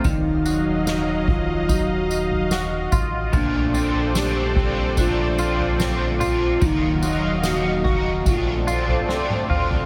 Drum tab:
TB |x-x-x---x-x-x-x-|x-x-x---x-x-x-x-|x-x-x---x-x-----|
SD |----o-------o---|----o-------o---|----o-------o---|
T1 |----------------|----------------|-------------o--|
T2 |----------------|----------------|--------------o-|
FT |o-----o-o--o--o-|o-----o-o--o--o-|o-----o-o--o---o|
BD |o-----o-o-----o-|o-----o-o-------|o-----o-o-------|